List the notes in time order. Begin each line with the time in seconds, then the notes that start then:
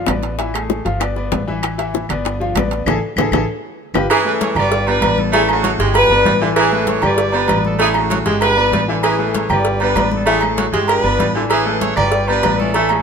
0.07 A1 B3 B4 D5, high bongo, low bongo, high conga, high timbale, low timbale, claves
0.23 high bongo, high conga, high timbale
0.38 E3 E4 E5, high bongo, high conga, high timbale
0.54 A3 G#4 A4, high bongo, high conga, high timbale, claves
0.70 high bongo, high conga, low timbale
0.85 G1 F3 F4 F5, high bongo, high conga, high timbale
1.00 B3 B4 D5, high bongo, high conga, high timbale, claves
1.16 B3 B4 D5, high bongo, high conga
1.32 A1, high bongo, low bongo, high conga, high timbale, low timbale
1.47 E3 E4 E5, high conga
1.63 high bongo, high conga, high timbale, claves
1.78 E3 E4 E5, high bongo, high conga, high timbale
1.94 high bongo, high conga, low timbale
2.09 G1 B3 B4 D5, high conga, low conga, high timbale, claves
2.25 high bongo, high conga, high timbale
2.40 F3 F4 F5, high bongo, high conga
2.55 A1 B3 B4 D5, high bongo, low bongo, high conga, high timbale, low timbale, claves
2.71 high bongo, high conga, high timbale
2.86 A1 E4 G#4 A4, high bongo, low conga, high timbale, claves
3.16 A1 E4 G#4 A4, high bongo, low conga, high timbale, claves
3.31 A1 E4 G#4 A4, high bongo, low conga, high timbale, claves
3.94 G1 F4 G4 B4, high bongo, low conga, high timbale, claves
4.10 E3 C#4 E4 G#4, cowbell, high conga, low agogo, claves
4.25 A3 G#4 A4 B4, high conga
4.41 C#5, cowbell, high conga, low agogo
4.55 G1 G3 F4 G4 B4 D5 G5, high conga, low conga, low agogo, claves
4.72 cowbell, high conga
4.87 G3 B3 D4 F4 B4 D5, high conga, low agogo
5.01 A1 B3 B4 D5, cowbell, high conga, low agogo, claves
5.18 A4, high conga
5.32 E3 A3 C#4 E4 G#4 E5, cowbell, high conga, low agogo
5.49 A3 C#4 F#4 G#4 A4, high conga, low agogo, claves
5.63 F#3, cowbell, high conga, low agogo
5.79 G1 G#3 G4 G#4 G5, cowbell, high conga
5.94 D4 F4 B4, cowbell, high conga, low agogo, claves
6.10 G1 B3 B4 D5, high conga, low agogo
6.25 A1 G3, cowbell, high conga, low timbale
6.41 D3 E3 E4 E5
6.56 E3 C#4 E4 G#4, cowbell, high conga, low agogo, claves
6.72 A3 G#4 A4 B4, high conga
6.87 C#5, cowbell, high conga, low agogo
7.02 G1 G3 F4 G4 B4 D5 G5, high conga, low conga, low agogo, claves
7.18 cowbell, high conga
7.32 G3 B3 D4 F4 B4 D5, high conga, low agogo
7.48 A1 B3 B4 D5, cowbell, high conga, low timbale, low agogo, claves
7.65 A4, high conga
7.78 E3 A3 C#4 E4 G#4 E5, cowbell, low agogo
7.94 A3 C#4 F#4 G#4 A4, high conga, low agogo, claves
8.10 F#3, cowbell, high conga, low agogo
8.26 G1 G#3 G4 G#4 G5, cowbell
8.41 D4 F4 B4, cowbell, high conga, low agogo, claves
8.56 B3 B4 D5, high conga, low agogo
8.72 A1 G3, cowbell, high conga, low timbale
8.88 D3 E3 E4 E5
9.03 E3 C#4 E4 G#4, cowbell, high conga, low agogo, claves
9.18 A3 G#4 A4 B4, high conga
9.34 C#5, cowbell, high conga, low agogo
9.49 G1 G3 F4 G4 B4 D5 G5, high conga, low conga, low agogo, claves
9.65 cowbell, high conga
9.80 G3 B3 D4 F4 B4 D5, high conga, low agogo
9.95 A1 B3 B4 D5, cowbell, high conga, low timbale, low agogo, claves
10.11 A4, high conga
10.26 E3 A3 C#4 E4 G#4 E5, cowbell, low agogo
10.41 A3 G#4 A4, high conga, low agogo, claves
10.57 F#3, cowbell, high conga, low agogo
10.72 G1 G#3 G4 G#4 G5, cowbell
10.88 D4 F4 B4, cowbell, high conga, low agogo, claves
11.04 G1 B3 B4 D5, high conga, low agogo
11.18 A1 G3, cowbell, high conga
11.34 D3 E3 E4 E5
11.49 E3 C#4 E4 G#4, cowbell, high conga, low agogo, claves
11.65 A3 G#4 A4 B4, high conga
11.81 C#5, cowbell, high conga, low agogo
11.95 G1 G3 F4 G4 B4 D5 G5, high conga, low conga, low agogo, claves
12.12 cowbell, high conga
12.28 G3 B3 D4 F4 B4 D5, high conga, low agogo
12.43 A1 B3 B4 D5, cowbell, high conga, low timbale, low agogo, claves
12.57 C#4 E4 A4, high conga
12.74 E3 A3 E4 E5, cowbell, high conga, low agogo
12.89 A3 G#4 A4, high conga, low agogo, claves